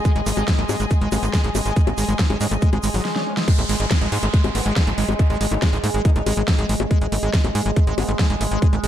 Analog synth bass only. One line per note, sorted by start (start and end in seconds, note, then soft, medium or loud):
0.16 0.22 G#1 medium
0.26 0.33 G#1 loud
0.37 0.44 G#1 medium
0.59 0.65 G#1 medium
0.69 0.76 G#2 loud
0.80 0.86 G#1 medium
1.01 1.08 G#1 medium
1.12 1.19 G#1 loud
1.23 1.29 G#1 medium
1.44 1.51 G#1 medium
1.55 1.61 G#1 loud
1.66 1.72 G#1 medium
1.87 1.94 G#1 medium
1.98 2.04 G#1 loud
2.09 2.15 G#1 medium
2.30 2.36 G#1 medium
2.41 2.47 G#2 loud
2.51 2.58 G#1 medium
2.73 2.79 G#1 medium
2.84 2.90 G#1 loud
2.94 3.01 G#1 medium
3.59 3.65 G#1 medium
3.69 3.76 G#1 loud
3.80 3.86 G#1 loud
4.01 4.08 G#1 medium
4.12 4.19 G#2 loud
4.23 4.29 G#1 medium
4.44 4.51 G#1 medium
4.55 4.61 G#1 loud
4.66 4.72 G#1 medium
4.87 4.94 G#1 medium
4.98 5.04 G#1 loud
5.09 5.15 G#1 medium
5.30 5.37 G#1 medium
5.41 5.47 G#1 loud
5.51 5.58 G#1 loud
5.73 5.79 G#1 medium
5.84 5.90 G#2 loud
5.94 6.01 G#1 medium
6.16 6.22 G#1 medium
6.26 6.33 G#1 loud
6.37 6.44 G#1 medium
6.59 6.65 G#1 medium
6.69 6.76 G#1 loud
6.80 6.87 G#1 medium
7.01 7.08 G#1 medium
7.12 7.19 G#1 loud
7.23 7.29 G#1 medium
7.44 7.51 G#1 medium
7.55 7.62 G#2 loud
7.66 7.72 G#1 medium
7.87 7.94 G#1 medium
7.98 8.04 G#1 loud
8.09 8.15 G#1 medium
8.30 8.37 G#1 medium
8.41 8.47 G#1 loud
8.51 8.58 G#1 medium
8.73 8.79 G#1 medium
8.84 8.88 G#1 loud